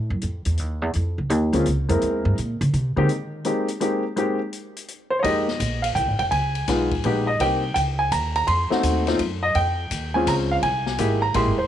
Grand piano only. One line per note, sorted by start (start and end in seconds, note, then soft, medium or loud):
1.53 1.64 G#3 medium
1.53 1.65 A#3 medium
1.53 1.65 C4 medium
1.53 1.65 C#4 medium
1.53 1.65 F4 medium
1.89 2.35 G#3 medium
1.89 2.35 A#3 medium
1.89 2.35 C4 medium
1.89 2.35 E4 medium
1.89 2.35 A#4 medium
2.96 3.08 G#3 medium
2.96 3.08 A#3 medium
2.96 3.08 C4 medium
2.96 3.08 D#4 medium
2.96 3.08 G4 medium
3.45 3.66 G#3 medium
3.45 3.66 A#3 soft
3.45 3.66 C4 medium
3.45 3.67 D#4 medium
3.45 3.67 G4 medium
3.80 4.02 G#3 medium
3.80 4.02 A#3 medium
3.80 4.02 C4 soft
3.80 4.03 D#4 medium
3.80 4.03 G4 medium
4.16 4.38 G#3 medium
4.16 4.38 A#3 soft
4.16 4.38 C4 medium
4.16 4.38 D#4 medium
4.16 4.39 G4 medium
5.10 5.18 C5 medium
5.19 5.24 C#5 medium
5.19 5.79 D#5 medium
5.23 5.45 G#3 medium
5.23 5.45 A#3 medium
5.23 5.46 D#4 medium
5.23 5.46 G4 medium
5.82 5.87 F5 medium
5.95 6.18 G5 medium
6.19 6.24 G5 medium
6.31 7.23 G#5 loud
6.68 6.89 G#3 medium
6.68 6.90 B3 medium
6.68 6.90 D#4 medium
6.68 6.90 F4 medium
7.05 7.26 G#3 medium
7.05 7.26 B3 medium
7.05 7.26 D#4 medium
7.05 7.26 G4 medium
7.27 7.40 D#5 medium
7.40 7.61 A#3 medium
7.40 7.61 C4 medium
7.40 7.62 D#4 medium
7.40 7.62 G4 medium
7.40 7.73 G5 loud
7.74 7.80 G5 medium
7.99 8.12 G#5 medium
8.12 8.34 A#5 medium
8.36 8.48 A#5 loud
8.47 9.46 C6 loud
8.70 9.04 A3 medium
8.70 9.05 C4 medium
8.70 9.05 D#4 medium
8.70 9.05 F#4 medium
9.07 9.18 A3 medium
9.07 9.18 C4 medium
9.07 9.19 D#4 medium
9.07 9.19 F4 medium
9.43 9.56 D#5 medium
9.55 10.17 G5 loud
10.14 10.61 G#3 medium
10.14 10.61 C4 medium
10.14 10.61 C#4 medium
10.14 10.62 F4 medium
10.14 10.26 G#5 medium
10.28 10.33 A#5 medium
10.51 10.56 F5 medium
10.63 11.18 G#5 loud
10.99 11.20 G#3 medium
10.99 11.20 A#3 medium
10.99 11.21 E4 medium
10.99 11.21 G4 medium
11.22 11.35 A#5 medium
11.34 11.56 G#3 medium
11.34 11.56 A#3 medium
11.34 11.56 E4 medium
11.34 11.57 G4 medium
11.34 11.59 C6 medium
11.58 11.63 C5 medium